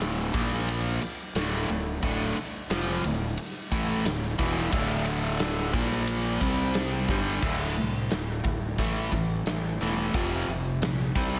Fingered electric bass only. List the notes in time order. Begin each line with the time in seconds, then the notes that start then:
Already playing: D1
0.34 A#1
1.02 muted fingered electric bass stroke
1.35 D1
1.69 D1
2.03 D1
2.38 muted fingered electric bass stroke
2.70 F1
3.05 D1
3.72 A1
4.05 D1
4.39 E1
4.73 D1
5.74 A#1
6.41 C2
7.09 G1
7.42 D1
7.78 C2
8.11 D1
8.45 D1
8.78 A1
9.12 A1
9.46 A1
9.80 E1
10.14 F1
10.47 F1
10.82 A#1
11.16 C2